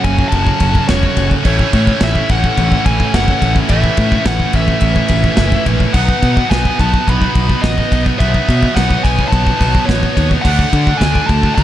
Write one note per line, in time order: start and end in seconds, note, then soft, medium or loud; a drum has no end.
0.00 1.43 F#2 medium
0.00 1.43 C#3 loud
0.00 1.42 F#3 medium
0.00 1.45 F#3 loud
0.00 5.92 C#4 medium
0.00 5.92 A4 medium
0.00 1.42 C#5 medium
0.00 0.28 G#5 medium
0.04 0.22 F#1 medium
0.04 0.13 C#4 medium
0.04 0.14 F#4 medium
0.04 kick medium
0.04 ride medium
0.13 0.20 C#4 medium
0.13 0.22 F#4 medium
0.19 0.28 C#4 medium
0.19 0.29 F#4 medium
0.19 kick medium
0.28 0.36 C#4 medium
0.28 0.37 F#4 medium
0.28 0.89 A5 loud
0.28 ride loud
0.33 0.50 F#1 loud
0.33 0.43 C#4 medium
0.33 kick medium
0.38 0.44 F#4 medium
0.43 0.51 C#4 medium
0.43 0.52 F#4 medium
0.43 kick medium
0.52 0.59 C#4 medium
0.52 0.60 F#4 medium
0.60 0.79 F#1 medium
0.60 0.67 C#4 medium
0.60 0.67 F#4 medium
0.60 kick medium
0.60 ride medium
0.68 0.75 C#4 medium
0.68 0.76 F#4 medium
0.75 0.82 C#4 medium
0.75 0.83 F#4 medium
0.75 kick medium
0.82 0.90 C#4 medium
0.82 0.91 F#4 medium
0.88 1.07 E1 medium
0.88 0.97 C#4 medium
0.88 1.28 C#5 medium
0.88 kick medium
0.88 snare loud
0.88 ride loud
0.92 0.99 F#4 medium
0.97 1.04 C#4 medium
0.97 1.07 F#4 medium
1.03 1.13 C#4 medium
1.03 kick medium
1.07 1.14 F#4 medium
1.13 1.19 C#4 medium
1.13 1.22 F#4 medium
1.13 kick medium
1.13 ride medium
1.18 1.35 F#1 medium
1.18 1.26 C#4 medium
1.22 1.30 F#4 medium
1.27 1.34 C#4 medium
1.27 1.38 F#4 medium
1.31 kick medium
1.36 1.44 C#4 medium
1.36 1.45 F#4 medium
1.44 1.63 A1 medium
1.44 3.68 A2 medium
1.44 5.91 E3 medium
1.44 3.69 E3 loud
1.44 3.70 A3 loud
1.44 1.53 C#4 medium
1.44 1.53 E4 medium
1.44 2.03 C#5 medium
1.44 3.68 C#5 medium
1.44 kick medium
1.44 crash loud
1.53 1.59 C#4 medium
1.53 1.61 E4 medium
1.59 1.67 C#4 medium
1.59 1.68 E4 medium
1.59 kick medium
1.68 1.75 C#4 medium
1.68 1.75 E4 medium
1.73 1.91 A2 medium
1.73 1.83 C#4 medium
1.73 1.83 E4 medium
1.73 kick medium
1.73 ride medium
1.84 1.91 C#4 medium
1.84 1.91 E4 medium
1.84 kick medium
1.91 1.99 C#4 medium
1.91 1.99 E4 medium
1.99 2.19 A1 loud
1.99 2.07 C#4 medium
1.99 2.06 E4 medium
1.99 2.29 E5 medium
1.99 kick medium
1.99 snare loud
1.99 ride loud
2.06 2.14 C#4 medium
2.06 2.14 E4 medium
2.14 2.22 C#4 medium
2.14 2.23 E4 medium
2.14 kick medium
2.22 2.29 C#4 medium
2.22 2.30 E4 medium
2.29 2.48 A1 medium
2.29 2.37 C#4 medium
2.29 2.38 E4 medium
2.29 2.88 F#5 loud
2.29 kick medium
2.29 ride medium
2.38 2.44 C#4 medium
2.38 2.46 E4 medium
2.44 2.52 C#4 medium
2.44 2.53 E4 medium
2.44 kick medium
2.53 2.61 C#4 medium
2.53 2.61 E4 medium
2.57 2.76 A1 loud
2.57 2.68 C#4 medium
2.57 2.68 E4 medium
2.57 kick medium
2.57 ride medium
2.68 2.76 C#4 medium
2.68 2.76 E4 medium
2.68 kick medium
2.76 2.84 C#4 medium
2.76 2.84 E4 medium
2.84 3.04 A1 medium
2.84 2.90 C#4 medium
2.84 2.92 E4 medium
2.84 3.15 G#5 loud
2.84 kick medium
2.84 ride medium
2.91 2.98 C#4 medium
2.91 2.99 E4 medium
2.99 3.05 C#4 medium
2.99 3.07 E4 medium
2.99 kick medium
3.06 3.14 C#4 medium
3.06 3.14 E4 medium
3.14 3.32 F#1 medium
3.14 3.22 C#4 medium
3.14 3.22 E4 medium
3.14 3.54 F#5 loud
3.14 kick medium
3.14 snare loud
3.14 ride loud
3.22 3.29 C#4 medium
3.22 3.30 E4 medium
3.28 3.37 C#4 medium
3.28 3.38 E4 medium
3.28 kick medium
3.38 3.46 C#4 medium
3.38 3.46 E4 medium
3.38 ride medium
3.42 3.60 A1 medium
3.42 kick medium
3.46 3.53 C#4 medium
3.46 3.53 E4 medium
3.54 3.60 C#4 medium
3.54 3.60 E4 medium
3.54 kick medium
3.61 3.68 C#4 medium
3.61 3.68 E4 medium
3.69 3.88 A1 medium
3.69 5.93 A2 medium
3.69 5.94 E3 medium
3.69 5.95 A3 loud
3.69 3.77 C#4 medium
3.69 3.78 E4 medium
3.69 8.16 B4 medium
3.69 4.27 E5 loud
3.69 kick medium
3.69 ride loud
3.78 3.85 C#4 medium
3.78 3.86 E4 medium
3.84 3.93 C#4 medium
3.84 3.94 E4 medium
3.84 kick medium
3.93 4.01 C#4 medium
3.93 4.01 E4 medium
3.97 4.16 A2 medium
3.97 kick medium
3.97 ride medium
4.01 4.08 C#4 medium
4.01 4.10 E4 medium
4.09 4.17 C#4 medium
4.09 4.16 E4 medium
4.09 kick medium
4.16 4.24 C#4 medium
4.16 4.23 E4 medium
4.24 4.44 A1 loud
4.24 4.32 C#4 medium
4.24 4.32 E4 medium
4.24 4.53 F#5 loud
4.24 kick medium
4.24 snare loud
4.24 ride loud
4.32 4.39 C#4 medium
4.32 4.39 E4 medium
4.39 4.47 C#4 medium
4.39 4.47 E4 medium
4.39 kick medium
4.48 4.55 C#4 medium
4.48 4.55 E4 medium
4.53 4.72 A1 medium
4.53 4.63 C#4 medium
4.53 4.63 E4 medium
4.53 5.64 E5 medium
4.53 kick medium
4.53 ride medium
4.63 4.70 C#4 medium
4.63 4.71 E4 medium
4.68 4.79 C#4 medium
4.68 kick medium
4.72 4.79 E4 medium
4.79 5.00 A1 loud
4.79 4.86 C#4 medium
4.79 4.86 E4 medium
4.79 kick medium
4.79 ride loud
4.86 4.94 C#4 medium
4.86 4.94 E4 medium
4.94 5.03 C#4 medium
4.94 5.02 E4 medium
4.94 kick medium
5.02 5.09 C#4 medium
5.02 5.09 E4 medium
5.08 5.28 A1 medium
5.08 5.17 C#4 medium
5.08 5.17 E4 medium
5.08 kick medium
5.08 ride medium
5.18 5.25 C#4 medium
5.18 5.26 E4 medium
5.24 5.33 C#4 medium
5.24 5.32 E4 medium
5.24 kick medium
5.33 5.40 C#4 medium
5.33 5.40 E4 medium
5.37 5.56 F#1 medium
5.37 5.48 C#4 medium
5.37 kick medium
5.37 snare loud
5.37 ride loud
5.42 5.49 E4 medium
5.48 5.56 C#4 medium
5.48 5.55 E4 medium
5.52 5.64 E4 medium
5.52 kick medium
5.56 5.63 C#4 medium
5.64 5.85 A#1 medium
5.64 5.72 C#4 medium
5.64 5.72 E4 medium
5.64 kick medium
5.64 ride medium
5.73 5.80 C#4 medium
5.73 5.80 E4 medium
5.80 5.87 C#4 medium
5.80 5.87 E4 medium
5.80 kick medium
5.87 5.93 C#4 medium
5.87 5.94 E4 medium
5.93 6.12 B1 loud
5.93 8.17 B2 medium
5.93 10.41 D#3 medium
5.93 8.19 F#3 medium
5.93 6.01 B3 medium
5.93 10.41 B3 medium
5.93 8.19 B3 loud
5.93 6.02 D#4 medium
5.93 11.63 F#4 medium
5.93 6.53 F#5 loud
5.93 kick medium
5.93 crash loud
6.01 6.08 B3 medium
6.01 6.09 D#4 medium
6.08 6.16 B3 medium
6.08 6.17 D#4 medium
6.08 kick medium
6.16 6.24 B3 medium
6.16 6.25 D#4 medium
6.22 6.41 B2 medium
6.22 6.32 B3 medium
6.22 6.32 D#4 medium
6.22 kick medium
6.22 ride medium
6.32 6.39 B3 medium
6.32 6.40 D#4 medium
6.37 6.47 B3 medium
6.37 6.48 D#4 medium
6.37 kick medium
6.48 6.69 B1 medium
6.48 6.54 B3 medium
6.48 6.55 D#4 medium
6.48 6.80 G#5 loud
6.48 kick medium
6.52 6.63 B3 medium
6.52 6.63 D#4 medium
6.52 snare loud
6.52 ride loud
6.63 6.70 B3 medium
6.63 6.71 D#4 medium
6.63 kick medium
6.70 6.78 B3 medium
6.70 6.79 D#4 medium
6.78 6.97 B1 loud
6.78 6.86 B3 medium
6.78 6.87 D#4 medium
6.78 7.09 A5 loud
6.78 kick medium
6.78 ride medium
6.86 6.92 B3 medium
6.86 6.94 D#4 medium
6.93 7.00 B3 medium
6.93 7.02 D#4 medium
6.93 kick medium
7.02 7.09 B3 medium
7.02 7.10 D#4 medium
7.08 7.26 B1 loud
7.08 7.16 B3 medium
7.08 7.17 D#4 medium
7.08 7.67 B5 loud
7.08 kick medium
7.08 ride medium
7.16 7.24 B3 medium
7.16 7.25 D#4 medium
7.22 7.32 B3 medium
7.22 kick medium
7.26 7.33 D#4 medium
7.32 7.53 B1 medium
7.32 7.40 B3 medium
7.32 7.41 D#4 medium
7.32 kick medium
7.32 ride medium
7.40 7.47 B3 medium
7.40 7.49 D#4 medium
7.48 7.54 B3 medium
7.48 7.55 D#4 medium
7.48 kick medium
7.54 7.62 B3 medium
7.54 7.63 D#4 medium
7.62 7.82 A1 medium
7.62 7.70 B3 medium
7.62 7.72 D#4 medium
7.62 8.02 D#5 loud
7.62 kick medium
7.62 snare loud
7.62 ride loud
7.70 7.78 B3 medium
7.70 7.79 D#4 medium
7.78 7.86 B3 medium
7.78 7.87 D#4 medium
7.78 kick medium
7.87 7.93 B3 medium
7.87 7.95 D#4 medium
7.92 8.10 B1 medium
7.92 8.01 B3 medium
7.92 8.02 D#4 medium
7.92 kick medium
7.92 ride medium
8.02 8.09 B3 medium
8.02 8.11 D#4 medium
8.02 kick medium
8.10 8.18 B3 medium
8.10 8.19 D#4 medium
8.18 8.38 B1 loud
8.18 10.43 B2 medium
8.18 10.45 F#3 medium
8.18 8.26 B3 medium
8.18 10.44 B3 loud
8.18 8.27 D#4 medium
8.18 10.44 C#5 medium
8.18 8.72 E5 loud
8.18 kick medium
8.18 ride loud
8.27 8.34 B3 medium
8.27 8.36 D#4 medium
8.34 8.42 B3 medium
8.34 8.43 D#4 medium
8.34 kick medium
8.42 8.49 B3 medium
8.42 8.51 D#4 medium
8.49 8.67 B2 medium
8.49 8.57 B3 medium
8.49 8.58 D#4 medium
8.49 kick medium
8.49 ride medium
8.58 8.65 B3 medium
8.58 8.66 D#4 medium
8.63 8.73 B3 medium
8.63 kick medium
8.67 8.74 D#4 medium
8.74 8.95 B1 loud
8.74 8.81 B3 medium
8.74 8.82 D#4 medium
8.74 9.05 F#5 loud
8.74 kick medium
8.74 snare loud
8.74 ride loud
8.81 8.89 B3 medium
8.81 8.90 D#4 medium
8.89 8.94 B3 medium
8.89 8.97 D#4 medium
8.89 kick medium
8.95 9.03 B3 medium
8.95 9.05 D#4 medium
9.03 9.23 B1 loud
9.03 9.11 B3 medium
9.03 9.13 D#4 medium
9.03 9.28 G#5 loud
9.03 kick medium
9.03 ride medium
9.12 9.20 B3 medium
9.12 9.21 D#4 medium
9.19 9.27 B3 medium
9.19 9.29 D#4 medium
9.19 kick medium
9.28 9.36 B3 medium
9.28 9.36 D#4 medium
9.28 9.89 A5 loud
9.32 9.50 B1 loud
9.32 kick medium
9.32 ride loud
9.37 9.44 B3 medium
9.37 9.44 D#4 medium
9.44 9.50 B3 medium
9.44 9.51 D#4 medium
9.44 kick medium
9.51 9.58 B3 medium
9.51 9.59 D#4 medium
9.58 9.78 B1 medium
9.58 9.66 B3 medium
9.58 9.67 D#4 medium
9.58 kick medium
9.58 ride medium
9.67 9.75 B3 medium
9.67 9.75 D#4 medium
9.75 9.82 B3 medium
9.75 9.82 D#4 medium
9.75 kick medium
9.83 9.91 B3 medium
9.83 9.90 D#4 medium
9.83 10.27 C#5 medium
9.89 10.07 A1 loud
9.89 9.99 B3 medium
9.89 9.98 D#4 medium
9.89 kick medium
9.89 snare loud
9.89 ride loud
9.98 10.05 B3 medium
9.98 10.06 D#4 medium
10.03 10.14 B3 medium
10.03 10.15 D#4 medium
10.03 kick medium
10.14 10.35 D#2 medium
10.14 10.21 B3 medium
10.14 10.20 D#4 medium
10.14 kick medium
10.14 ride medium
10.21 10.29 B3 medium
10.21 10.29 D#4 medium
10.29 10.37 B3 medium
10.29 10.38 D#4 medium
10.29 kick medium
10.38 10.43 B3 medium
10.38 10.44 D#4 medium
10.42 10.63 D2 medium
10.42 11.63 D3 loud
10.42 11.63 D3 medium
10.42 10.52 A3 medium
10.42 11.63 A3 loud
10.42 11.63 A3 medium
10.42 10.52 D4 loud
10.42 11.02 F#5 loud
10.42 kick medium
10.42 crash loud
10.46 11.63 D4 loud
10.46 11.63 A4 loud
10.52 10.58 A3 medium
10.52 10.58 D4 medium
10.58 10.66 A3 medium
10.58 10.67 D4 medium
10.58 kick medium
10.68 10.74 A3 medium
10.68 10.76 D4 medium
10.73 10.91 D3 medium
10.73 10.81 A3 medium
10.73 10.83 D4 medium
10.73 kick medium
10.73 ride medium
10.81 10.89 A3 medium
10.81 10.90 D4 medium
10.87 10.98 A3 medium
10.87 10.97 D4 medium
10.87 kick medium
10.97 11.19 D2 medium
10.97 11.05 A3 medium
10.97 11.06 D4 medium
10.97 11.26 G#5 loud
10.97 kick medium
11.02 11.12 A3 medium
11.02 snare loud
11.02 ride loud
11.07 11.14 D4 medium
11.12 11.20 A3 medium
11.12 11.22 D4 medium
11.12 kick medium
11.21 11.27 A3 medium
11.21 11.30 D4 medium
11.27 11.48 D2 loud
11.27 11.36 A3 medium
11.27 11.55 A5 loud
11.27 kick medium
11.27 ride medium
11.31 11.37 D4 medium
11.38 11.44 A3 medium
11.38 11.45 D4 medium
11.43 11.51 A3 medium
11.43 11.53 D4 medium
11.43 kick medium
11.51 11.59 A3 medium
11.51 11.61 D4 medium
11.51 11.63 B5 loud
11.58 11.63 D2 loud
11.58 kick medium
11.58 ride loud